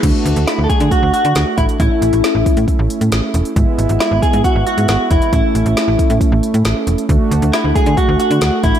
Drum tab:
CC |x---------------|----------------|----------------|----------------|
HH |x-xxx-xxx-xxx-xx|x-xxx-xxx-xxx-xx|x-xxx-xxx-xxx-xx|x-xxx-xxx-xxx-xx|
SD |----o-------o---|----o-------o---|----o-------o---|----o-------o---|
BD |o-----o-o-----o-|o-----o-o-------|o-----o-o-----o-|o-----o-o-------|

CC |----------------|
HH |x-xxx-xxx-xxx-xx|
SD |----o-------o---|
BD |o-----o-o-----o-|